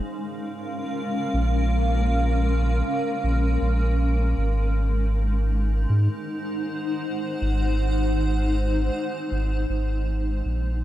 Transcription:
Already playing: G#3 C#4 D#4 A#4 F5
1.34 A#1
3.24 A#1
3.62 A#1
4.38 G#1
4.49 D#4
5.82 C5
5.88 G#2 F#5
7.42 G#1
9.31 G#1
9.70 G#1
10.45 A#1
10.72 A#4

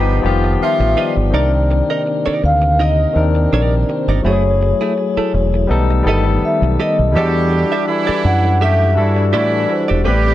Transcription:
Already playing: G1 F3 G3 B3 D#4 F4 G4 B4 D#5
0.22 F1 D#3 F3 B3 F4 G4, muted clean electric guitar stroke
0.44 muted clean electric guitar stroke
0.61 F3 F4 E5, muted fingered electric bass stroke
0.80 A1, muted clean electric guitar stroke
0.97 F4 B4 D5 D#5
1.17 G1
1.30 C2 C3 D#3 A#3 C4 D4 D#4 G4 A#4
1.34 A#4 D5
1.70 muted clean electric guitar stroke
1.90 D#4 A#4 D#5
2.06 muted clean electric guitar stroke
2.26 D#4 A#4 D5, muted fingered electric bass stroke
2.43 D2 F5, muted clean electric guitar stroke
2.62 muted clean electric guitar stroke
2.79 D#4 A#4 D#5
3.13 D#2 D#3 C4 D4 A#4, muted clean electric guitar stroke
3.18 D5
3.35 muted clean electric guitar stroke
3.53 A#1 D#4 A#4 D5
3.83 D5
3.89 C5, muted clean electric guitar stroke
4.08 G1 D#4 A#4 D5
4.22 F#1 F#3 A3 E4 F#4 G#4
4.26 G#4 C#5
4.33 G#4
4.62 muted clean electric guitar stroke
4.81 A3 E4 G#4
4.97 muted clean electric guitar stroke
5.17 A3 E4 A4, muted fingered electric bass stroke
5.34 E1, muted clean electric guitar stroke
5.54 muted clean electric guitar stroke
5.67 B1 D#3 G3 A3 B3 D#4 A4, muted clean electric guitar stroke
5.91 muted clean electric guitar stroke
6.03 G1 D#3 G3 B3 A4
6.07 G4 A4 D#5
6.27 muted clean electric guitar stroke
6.42 E5, muted fingered electric bass stroke
6.62 B1, muted clean electric guitar stroke
6.80 G4 A4 D#5
6.99 B1, muted clean electric guitar stroke
7.12 E2 E3 G3 D4 E4 F#4 G4 A4 F#5
7.16 G4 A4 D5
7.52 muted clean electric guitar stroke
7.72 G4 A4 E5
7.88 E3 E4, muted clean electric guitar stroke
8.07 G4 A4 D5, muted fingered electric bass stroke
8.24 F#2 F#5, muted clean electric guitar stroke
8.45 muted clean electric guitar stroke
8.61 A3 G4 A4 E5
8.94 G2 E3 G3 D4 E4 F#4 A4, muted clean electric guitar stroke
9.00 D5
9.17 muted clean electric guitar stroke
9.33 A2 E3 E4 G4 A4 D5
9.69 C5, muted clean electric guitar stroke
9.88 E1 G4 A4 D5
10.04 A1 G3 A3 B3 C4 G4 B4
10.08 C4 D5

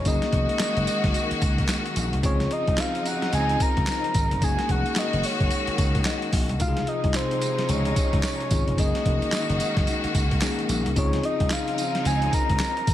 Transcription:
0.05 F#1 D#3 G#3 A#3 C#4 D#4 F#4 G#4 D#5, kick, closed hi-hat, tambourine
0.22 snare, closed hi-hat
0.33 F1, kick, closed hi-hat
0.49 closed hi-hat
0.59 snare, clap, closed hi-hat, tambourine
0.77 F#1, closed hi-hat
0.87 closed hi-hat, tambourine
1.04 F#1, kick, snare, closed hi-hat
1.14 closed hi-hat, tambourine
1.31 muted slap bass stroke, closed hi-hat
1.42 C#2, kick, closed hi-hat, tambourine
1.58 kick, closed hi-hat
1.69 snare, clap, closed hi-hat, tambourine
1.86 closed hi-hat
1.96 A#1, closed hi-hat, tambourine
2.13 C2, closed hi-hat
2.23 C#2 C#3 F3 C4 D#4 F4 G#4 C#5, kick, closed hi-hat, tambourine
2.40 snare, closed hi-hat
2.51 D#5, closed hi-hat
2.67 C2, kick, closed hi-hat
2.78 F5, snare, clap, closed hi-hat, tambourine
2.95 closed hi-hat
3.06 F#5, closed hi-hat, tambourine
3.22 snare, closed hi-hat
3.33 C#2 G#5, closed hi-hat, tambourine
3.49 closed hi-hat
3.60 A#5, kick, closed hi-hat, tambourine
3.77 C#2, kick, closed hi-hat
3.87 snare, clap, closed hi-hat, tambourine
4.04 closed hi-hat
4.14 G#1, kick, closed hi-hat, tambourine
4.31 F1, closed hi-hat
4.41 F#1 D#3 G#3 A#3 C#4 D#4 F#4 G#4 G#5, kick, closed hi-hat, tambourine
4.59 snare, closed hi-hat
4.69 F1 F#5, kick, closed hi-hat
4.86 closed hi-hat
4.96 D#5, snare, clap, closed hi-hat, tambourine
5.13 F#1, closed hi-hat
5.23 C#5, open hi-hat, tambourine
5.40 F#1, kick, closed hi-hat
5.51 closed hi-hat, tambourine
5.67 muted slap bass stroke, closed hi-hat
5.78 C#2, kick, closed hi-hat, tambourine
5.95 kick, closed hi-hat
6.05 D#5, snare, clap, closed hi-hat, tambourine
6.22 closed hi-hat
6.32 A#1, kick, open hi-hat, tambourine
6.49 C2, closed hi-hat
6.59 C#2 C3 F3 G#3 D#4 F4 F#4 F5, kick, closed hi-hat, tambourine
6.68 G#4
6.77 snare, closed hi-hat
6.87 D#5, closed hi-hat
7.04 C2, kick, closed hi-hat
7.14 C5, snare, clap, closed hi-hat, tambourine
7.31 closed hi-hat
7.42 closed hi-hat, tambourine
7.58 snare, closed hi-hat
7.69 C#2 C#5, closed hi-hat, tambourine
7.85 closed hi-hat
7.96 kick, closed hi-hat, tambourine
8.13 C#2, kick, closed hi-hat
8.23 C#5, snare, clap, closed hi-hat, tambourine
8.40 closed hi-hat
8.51 G#1 C4 D#4 F4 G#4, kick, closed hi-hat, tambourine
8.68 F1, closed hi-hat
8.77 F#1 D#3 G#3 A#3 C#4 D#4 F#4 G#4 D#5, kick, closed hi-hat, tambourine
8.95 snare, closed hi-hat
9.05 F1, kick, closed hi-hat
9.22 closed hi-hat
9.32 snare, clap, closed hi-hat, tambourine
9.49 F#1, closed hi-hat
9.60 closed hi-hat, tambourine
9.77 F#1, kick, snare, closed hi-hat
9.87 closed hi-hat, tambourine
10.04 muted slap bass stroke, closed hi-hat
10.14 C#2, kick, closed hi-hat, tambourine
10.31 kick, closed hi-hat
10.42 A#3 C#4 D#4 G#4, snare, clap, closed hi-hat, tambourine
10.59 closed hi-hat
10.69 A#1, closed hi-hat, tambourine
10.86 C2, closed hi-hat
10.96 C#2 C#3 F3 C4 D#4 F4 G#4 C#5, kick, closed hi-hat, tambourine
11.13 snare, closed hi-hat
11.23 D#5, closed hi-hat
11.40 C2, kick, closed hi-hat
11.50 F5, snare, clap, closed hi-hat, tambourine
11.68 closed hi-hat
11.78 closed hi-hat, tambourine
11.95 snare, closed hi-hat
12.05 C#2 G#5, closed hi-hat, tambourine
12.22 closed hi-hat
12.33 A#5, kick, closed hi-hat, tambourine
12.49 C#2, kick, closed hi-hat
12.60 snare, clap, closed hi-hat, tambourine
12.77 closed hi-hat
12.87 G#1, kick, closed hi-hat, tambourine

